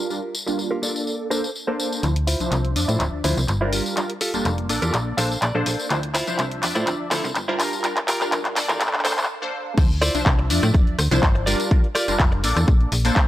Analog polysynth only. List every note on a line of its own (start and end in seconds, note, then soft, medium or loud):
0.10 0.20 G3 medium
0.10 0.20 D4 medium
0.10 0.20 F4 medium
0.10 0.20 A#4 medium
0.47 0.80 G3 medium
0.47 0.80 A#3 medium
0.47 0.80 D4 medium
0.47 0.80 F4 medium
0.82 1.28 A#3 medium
0.82 1.28 D4 medium
0.82 1.28 A4 medium
0.82 1.28 D5 medium
1.31 1.46 A#3 medium
1.31 1.46 D4 medium
1.31 1.46 A4 medium
1.31 1.46 C5 medium
1.67 2.00 A#3 medium
1.67 2.01 D4 medium
1.67 2.01 C5 medium
1.67 2.01 A5 medium
2.03 2.13 F3 medium
2.03 2.13 D4 medium
2.03 2.13 E4 medium
2.03 2.13 C5 medium
2.40 2.73 F3 medium
2.40 2.73 D4 medium
2.40 2.73 C5 medium
2.40 2.73 E5 medium
2.76 3.21 F3 medium
2.76 3.22 D4 medium
2.76 3.22 D5 medium
2.76 3.22 E5 medium
3.24 3.39 F3 medium
3.24 3.40 D4 medium
3.24 3.40 E4 medium
3.24 3.40 C5 medium
3.61 3.94 G3 medium
3.61 3.94 D4 medium
3.61 3.94 F4 medium
3.61 3.94 A#4 medium
3.97 4.07 G3 medium
3.97 4.07 D4 medium
3.97 4.07 F4 medium
3.97 4.07 A#4 medium
4.34 4.67 G3 medium
4.34 4.67 A#3 medium
4.34 4.67 D4 medium
4.34 4.67 F4 medium
4.69 5.15 A#3 medium
4.69 5.15 D4 medium
4.69 5.15 A4 medium
4.69 5.15 D5 medium
5.18 5.33 A#3 medium
5.18 5.33 D4 medium
5.18 5.33 A4 medium
5.18 5.33 C5 medium
5.55 5.88 A#3 medium
5.55 5.88 D4 medium
5.55 5.88 A4 medium
5.55 5.88 C5 loud
5.90 6.00 F3 medium
5.90 6.00 D4 medium
5.90 6.00 E4 medium
5.90 6.00 C5 medium
6.27 6.60 F3 medium
6.27 6.60 D4 medium
6.27 6.61 C5 medium
6.27 6.60 E5 medium
6.63 7.09 F3 medium
6.63 7.09 D4 medium
6.63 7.09 D5 loud
6.63 7.09 E5 medium
7.11 7.27 F3 medium
7.11 7.27 D4 medium
7.11 7.27 E4 medium
7.11 7.27 C5 medium
7.48 7.81 G3 medium
7.48 7.81 D4 medium
7.48 7.81 F4 medium
7.48 7.82 A#4 loud
7.84 7.94 G3 medium
7.84 7.94 D4 medium
7.84 7.94 F4 medium
7.84 7.94 A#4 medium
8.21 8.54 G3 medium
8.21 8.54 D4 medium
8.21 8.54 F4 medium
8.21 8.54 A#4 medium
8.56 9.02 A#3 medium
8.56 9.02 D4 medium
8.56 9.02 A4 medium
8.56 9.03 D5 loud
9.05 9.20 A#3 medium
9.05 9.20 D4 medium
9.05 9.20 A4 medium
9.05 9.21 C5 medium
9.42 9.75 A#3 medium
9.42 9.75 D4 medium
9.42 9.75 A4 medium
9.42 9.75 C5 loud
9.78 9.87 F3 medium
9.78 9.87 D4 medium
9.78 9.88 E4 medium
9.78 9.88 C5 medium
10.14 10.47 F3 medium
10.14 10.47 D4 medium
10.14 10.48 C5 medium
10.14 10.48 E5 medium
10.50 10.96 F3 medium
10.50 10.96 D4 medium
10.50 10.96 D5 loud
10.50 10.96 E5 medium
11.11 11.44 F3 loud
11.11 11.44 D4 medium
11.11 11.44 E4 medium
11.11 11.44 C5 loud
11.47 11.68 G3 medium
11.47 11.69 D4 medium
11.47 11.69 F4 medium
11.47 11.69 A#4 medium
11.71 11.81 G3 medium
11.71 11.81 D4 medium
11.71 11.81 F4 medium
11.71 11.81 A#4 medium
12.08 12.41 G3 medium
12.08 12.41 D4 medium
12.08 12.41 F4 medium
12.08 12.41 A#4 medium
12.44 12.89 A#3 medium
12.44 12.89 D4 medium
12.44 12.90 A4 medium
12.44 12.90 D5 loud
13.05 13.28 A#3 loud
13.05 13.28 D4 medium
13.05 13.28 A4 medium
13.05 13.28 C5 loud